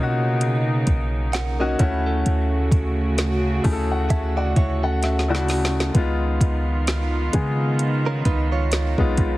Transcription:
0.00 0.84 B2 loud
0.00 1.76 B2 medium
0.00 1.76 C#3 medium
0.00 1.59 A#3 medium
0.00 1.75 A#3 medium
0.00 1.60 C#4 medium
0.00 1.61 D#4 medium
0.00 1.76 D#4 medium
0.00 1.81 F4 medium
0.00 0.03 F#4 medium
0.00 1.01 F#4 medium
0.00 1.81 G#4 medium
0.41 closed hi-hat medium
0.87 1.76 B1 loud
0.87 kick medium
0.87 closed hi-hat medium
1.33 1.59 A#4 medium
1.33 1.59 F#5 medium
1.33 snare loud
1.33 closed hi-hat medium
1.59 1.79 A#3 medium
1.59 1.78 C#4 medium
1.59 1.80 D#4 medium
1.59 1.79 F#4 medium
1.59 1.79 D#5 medium
1.79 2.24 D2 loud
1.79 5.91 C#3 medium
1.79 3.28 A3 medium
1.79 5.91 A3 medium
1.79 3.29 C#4 medium
1.79 2.05 E4 medium
1.79 3.29 E4 medium
1.79 5.91 F#4 medium
1.79 3.29 F#4 loud
1.79 2.05 C#5 medium
1.79 kick loud
1.79 closed hi-hat medium
2.06 3.41 C#4 medium
2.06 3.41 A4 medium
2.26 2.70 D2 loud
2.26 closed hi-hat medium
2.72 3.60 D2 loud
2.72 kick loud
2.72 closed hi-hat medium
3.18 snare loud
3.18 closed hi-hat medium
3.64 4.09 D2 loud
3.64 4.66 A3 medium
3.64 4.67 C#4 medium
3.64 4.67 E4 medium
3.64 3.72 G#4 medium
3.64 3.89 A5 medium
3.64 kick medium
3.64 open hi-hat medium
3.72 4.71 A4 medium
3.92 4.09 F#5 medium
4.10 4.54 D2 loud
4.10 4.36 G#4 medium
4.10 4.36 E5 medium
4.10 4.35 A5 medium
4.10 kick loud
4.10 closed hi-hat medium
4.37 4.56 F#4 medium
4.37 4.55 D5 medium
4.37 4.55 F#5 medium
4.56 5.91 D2 loud
4.56 4.82 E4 medium
4.56 4.82 C#5 medium
4.56 4.81 E5 medium
4.56 kick loud
4.56 closed hi-hat medium
4.83 5.91 C#4 medium
4.83 5.91 A4 medium
4.83 5.01 F#5 medium
5.03 5.28 E5 medium
5.03 snare medium
5.03 closed hi-hat medium
5.19 snare medium
5.28 5.72 C#3 medium
5.28 5.72 A3 medium
5.28 5.72 E4 medium
5.28 5.73 F#4 medium
5.28 5.91 D5 medium
5.35 snare medium
5.48 snare medium
5.48 open hi-hat medium
5.65 snare loud
5.80 snare medium
5.94 6.39 C#2 loud
5.94 9.38 D#3 medium
5.94 6.82 G#3 medium
5.94 6.82 B3 medium
5.94 9.38 B3 medium
5.94 6.83 D#4 medium
5.94 9.38 F4 medium
5.94 6.83 F4 medium
5.94 kick loud
5.94 closed hi-hat medium
6.41 7.30 C#2 loud
6.41 kick medium
6.41 closed hi-hat medium
6.87 snare loud
6.87 closed hi-hat medium
7.33 8.22 C#3 loud
7.33 8.36 G#3 medium
7.33 8.36 B3 medium
7.33 8.36 D#4 medium
7.33 8.37 G#4 medium
7.33 kick medium
7.33 closed hi-hat medium
7.79 closed hi-hat medium
8.06 8.25 C#4 medium
8.06 8.25 A#4 medium
8.25 8.96 C#2 loud
8.25 8.51 D#4 medium
8.25 8.51 B4 medium
8.25 kick medium
8.25 closed hi-hat medium
8.52 9.38 F4 medium
8.52 9.38 C#5 medium
8.72 snare loud
8.72 closed hi-hat medium
8.98 9.38 B1 loud
8.98 9.38 G#3 medium
8.98 9.38 B3 medium
8.98 9.38 D#4 medium
8.98 9.38 F4 medium
8.98 kick medium
9.17 kick medium
9.17 closed hi-hat medium

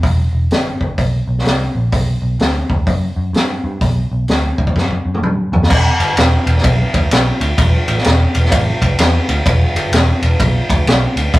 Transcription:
0.03 0.25 E1 medium
0.03 kick loud
0.03 open hi-hat soft
0.33 0.45 E1 medium
0.51 0.73 G1 medium
0.51 snare loud
0.51 open hi-hat soft
0.81 0.93 G1 medium
0.81 kick medium
0.98 1.20 B1 medium
0.98 kick medium
0.98 open hi-hat soft
1.28 1.40 B1 medium
1.38 snare soft
1.45 1.66 C2 medium
1.45 snare medium
1.45 open hi-hat soft
1.75 1.88 A#1 medium
1.92 2.14 B1 medium
1.92 kick loud
1.92 open hi-hat medium
2.22 2.35 B1 medium
2.39 2.61 D2 medium
2.39 snare loud
2.39 open hi-hat soft
2.70 2.82 D2 medium
2.70 kick medium
2.87 3.09 F#2 medium
2.87 kick medium
2.87 open hi-hat soft
3.16 3.29 F#2 medium
3.33 3.55 G2 medium
3.33 snare loud
3.33 open hi-hat soft
3.64 3.76 G2 medium
3.81 4.03 B1 medium
3.81 kick medium
3.81 open hi-hat soft
4.11 4.24 B1 medium
4.28 4.50 D2 medium
4.28 snare medium
4.28 open hi-hat soft
4.58 4.71 D2 medium
4.58 kick medium
4.67 kick medium
4.76 4.97 F#2 medium
4.76 kick medium
4.76 snare medium
4.91 kick soft
5.05 5.18 F#2 medium
5.14 mid tom medium
5.22 5.44 G2 medium
5.22 mid tom medium
5.52 5.65 D#2 medium
5.52 floor tom medium
5.63 snare medium
5.70 5.88 E1 loud
5.70 kick loud
5.70 crash loud
6.00 6.10 G1 medium
6.00 ride medium
6.17 6.35 E1 medium
6.17 snare loud
6.17 ride medium
6.46 6.57 E1 medium
6.46 ride medium
6.57 snare soft
6.64 6.82 B1 medium
6.64 kick loud
6.64 ride medium
6.94 7.04 D2 medium
6.94 kick medium
6.94 ride medium
7.11 7.29 B1 medium
7.11 snare loud
7.11 ride medium
7.41 7.51 D2 medium
7.41 ride medium
7.58 7.76 E1 medium
7.58 kick loud
7.58 ride loud
7.88 7.98 A1 medium
7.88 ride medium
7.97 snare soft
8.04 8.24 E1 medium
8.04 snare loud
8.04 ride medium
8.35 8.45 E1 medium
8.35 ride medium
8.45 snare soft
8.52 8.70 A1 medium
8.52 kick loud
8.52 ride loud
8.82 8.92 C2 medium
8.82 kick medium
8.82 ride medium
8.99 9.17 E2 medium
8.99 snare loud
8.99 ride loud
9.29 9.39 D2 medium
9.29 ride medium
9.46 9.64 E1 medium
9.46 kick loud
9.46 ride loud
9.75 9.85 G1 medium
9.75 ride medium
9.92 10.10 E1 medium
9.92 snare loud
9.92 ride medium
10.22 10.33 E1 medium
10.22 ride medium
10.40 10.58 B1 medium
10.40 kick medium
10.40 ride medium
10.70 10.80 D2 medium
10.70 kick medium
10.70 ride medium
10.86 11.04 B1 medium
10.86 snare loud
10.86 ride medium
11.16 11.27 D2 medium
11.16 ride medium
11.34 11.39 E1 loud
11.34 kick loud
11.34 ride loud

